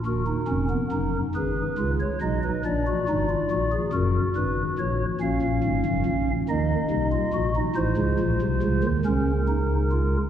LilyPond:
<<
  \new Staff \with { instrumentName = "Pipe organ" } { \time 6/8 \key ees \minor \tempo 4. = 47 << { bes'4. ces''8. des''16 ees''16 ces''16 | d''4. bes'8 ces''8 des''8 | f''4. ees''4. | c''4. bes'4. | } \\ { ges'16 ees'16 des'16 ces'16 ees'8 aes'8 f'8 ees'8 | d'16 ges'16 ees'16 f'16 ges'16 aes'16 ges'4. | des'4. ees'8. f'16 ges'16 ees'16 | f'4. des'8 ees'8 f'8 | } >> }
  \new Staff \with { instrumentName = "Pipe organ" } { \clef bass \time 6/8 \key ees \minor <ees,, ees,>8 <f,, f,>8 <ges,, ges,>8 <aes,, aes,>8 <des, des>8 <ces, ces>8 | <bes,, bes,>8 <aes,, aes,>8 <bes,, bes,>8 <ges,, ges,>8 <aes,, aes,>8 <bes,, bes,>8 | <bes,, bes,>16 <bes,, bes,>16 <aes,, aes,>16 <ges,, ges,>16 <bes,, bes,>8 <ees, ees>8 <c, c>8 <bes,, bes,>8 | <a,, a,>16 <des, des>16 <bes,, bes,>16 <c, c>16 <des, des>16 <ees, ees>16 <des, des>4. | }
>>